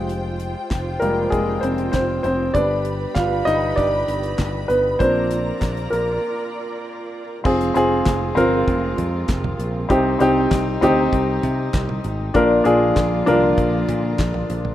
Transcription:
Already playing: F1 G#3 F4 G4 C5 G5
0.09 closed hi-hat
0.40 closed hi-hat
0.71 F1, kick, snare, clap, closed hi-hat
1.00 F1 G3 G#3 A#3 F4 A#4, closed hi-hat
1.30 F1 G#3 G#4, kick, closed hi-hat
1.61 F1 C4 C5, closed hi-hat
1.78 closed hi-hat
1.92 F1 C4 C5, kick, snare, clap, closed hi-hat
2.23 F1 C4 C5, closed hi-hat
2.54 G1 G3 B3 D4 G4 B4 D5 B5, kick, closed hi-hat
2.85 closed hi-hat
3.15 G1 F4 F5, kick, snare, clap, closed hi-hat
3.45 G1 D#4 D#5, closed hi-hat
3.76 G1 D4 D5, kick, closed hi-hat
4.08 G1, closed hi-hat
4.23 closed hi-hat
4.38 G1, kick, snare, clap, closed hi-hat
4.68 G1 B3 B4, closed hi-hat
4.99 A#1 F3 A#3 C4 D4 F4 A#4 C5 D5 A#5, kick, closed hi-hat
5.31 snare, closed hi-hat
5.61 A#1, kick, snare, clap, closed hi-hat
5.77 closed hi-hat
5.90 A#1 A#3 A#4, closed hi-hat
7.44 F1 C3 F3 G#3 C4 F4 G#4, kick, crash
7.61 closed hi-hat
7.74 F1 C4 F4 G#4, snare, closed hi-hat
8.06 F1, kick, snare, clap, closed hi-hat
8.35 G1 C4 F4 A#4, closed hi-hat, floor tom
8.68 F1, kick, closed hi-hat
8.98 F2, closed hi-hat, floor tom
9.28 F1, kick, snare, clap, closed hi-hat
9.44 floor tom
9.59 A#1, closed hi-hat
9.89 C2 C3 G3 C4 D#4 G4, kick, closed hi-hat
10.19 C2 C4 D#4 G4, closed hi-hat
10.51 C2, kick, snare, clap, closed hi-hat
10.81 D2 C4 D#4 G4, closed hi-hat, floor tom
11.13 C2, kick, closed hi-hat
11.43 C3, closed hi-hat, floor tom
11.73 C2, kick, snare, clap, closed hi-hat
11.89 floor tom
12.04 G#1, closed hi-hat
12.34 A#1 A#2 D3 F3 A#3 D4 F4 A#4, kick, closed hi-hat
12.64 A#1 D4 F4 G#4, closed hi-hat
12.96 A#1, kick, snare, clap, closed hi-hat
13.26 C2 D4 F4 A#4, closed hi-hat, floor tom
13.58 A#1, kick, closed hi-hat
13.89 A#2, closed hi-hat, floor tom
14.18 A#1, kick, snare, clap, closed hi-hat
14.34 floor tom
14.50 A#1, closed hi-hat
14.65 floor tom

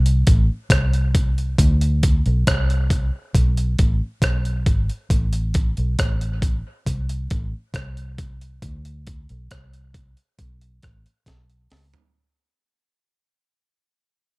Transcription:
Already playing: C2
0.06 closed hi-hat
0.27 A1, kick, closed hi-hat
0.70 C2, kick, cross-stick, closed hi-hat
0.94 closed hi-hat
1.15 kick, closed hi-hat
1.38 closed hi-hat
1.58 D2, kick, closed hi-hat
1.81 closed hi-hat
2.03 kick, closed hi-hat
2.26 B1, closed hi-hat
2.47 C2, kick, cross-stick, closed hi-hat
2.70 closed hi-hat
2.90 kick, closed hi-hat
3.35 B1, kick, closed hi-hat
3.57 closed hi-hat
3.79 A1, kick, closed hi-hat
4.22 B1, kick, cross-stick, closed hi-hat
4.45 closed hi-hat
4.66 G#1, kick, closed hi-hat
4.89 closed hi-hat
5.10 A1, kick, closed hi-hat
5.33 closed hi-hat
5.54 kick, closed hi-hat
5.77 B1, closed hi-hat
5.99 A1, kick, cross-stick, closed hi-hat
6.21 closed hi-hat
6.42 kick, closed hi-hat
6.86 C2, kick, closed hi-hat
7.09 closed hi-hat
7.30 A1, kick, closed hi-hat
7.74 C2, kick, cross-stick, closed hi-hat
7.97 closed hi-hat
8.18 kick, closed hi-hat
8.41 closed hi-hat
8.62 D2, kick, closed hi-hat
8.85 closed hi-hat
9.07 kick, closed hi-hat
9.29 B1, closed hi-hat
9.51 C2, kick, cross-stick, closed hi-hat
9.73 closed hi-hat
9.94 kick, closed hi-hat
10.17 closed hi-hat
10.39 B1, kick, closed hi-hat
10.61 closed hi-hat
10.82 A1, kick, cross-stick, closed hi-hat
11.06 closed hi-hat
11.26 B1, kick, snare, closed hi-hat
11.50 closed hi-hat
11.70 C#2, snare, open hi-hat
11.94 closed hi-hat, floor tom

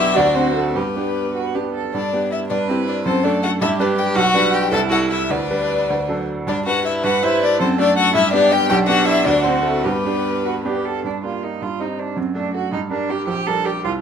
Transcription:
Already playing: B1 B3 D4 E4 G4 E5
0.15 D2 D4 F#4 D5
0.34 C4 D4 F#4 C5
0.54 A3 A4
0.74 G2 B3 G4 B4
0.96 B3 D4 G4
1.34 F#4
1.55 B3 D4 G4
1.75 A4
1.93 G2 D4 D5
2.13 B3 D4 G4
2.31 E4 E5
2.48 G2 D4 B4 D5
2.67 C4 E4 G4 C5
2.86 D4 D5
3.05 F#2 C4 A4 C5
3.24 A3 D4 A4 D5
3.43 F#4 F#5
3.61 G2 E4 G4 E5
3.79 G3 D4 B4 D5
3.98 G4 G5
4.16 B1 F#4 F#5
4.34 G3 D4 B4
4.53 G4 G5
4.71 C2 E4 A4 A5
4.90 G3 E4 F#4 A4 F#5
5.10 E4 E5
5.30 D2 D4 B4 D5
5.50 G3 D4 B4
5.90 D2
6.09 F#3 D4 A4
6.47 G2 D4 D5
6.66 G3 D4 F#4 B4 F#5
6.85 E4 E5
7.03 G2 F#4 B4 F#5
7.23 G3 E4 C5 E5
7.41 D4 D5
7.59 F#2 C4 A4 C5
7.78 A3 D4 A4 D5
7.97 F#4 F#5
8.14 G2 E4 G4 E5
8.33 B3 D4 G4 D5
8.52 G4 G5
8.69 B1 D4 G4 G5
8.87 B3 D4 F#4 G4 F#5
9.05 E4 E5
9.25 D2 D4 F#4 D5
9.43 C4 D4 F#4 C5
9.63 A3 A4
9.84 G2 B3 G4 B4
10.05 B3 D4 G4
10.45 F#4
10.65 B3 D4 G4
10.85 A4
11.04 G2 D4
11.23 A#3 D4 F4 G4
11.43 D#4 G4 A#4
11.62 G2 F4
11.80 C4 D#4 G4
11.99 D4 C5 D#5
12.16 F#2 C4
12.35 A3 D4 A4
12.54 F#4 A4 D5
12.72 G2 D#4
12.90 G3 D4 A#4
13.09 G4 A#4 D5
13.27 A#1 G4
13.46 G3 D4 A4 A#4
13.65 G4 A#4 D5
13.84 C2 F4

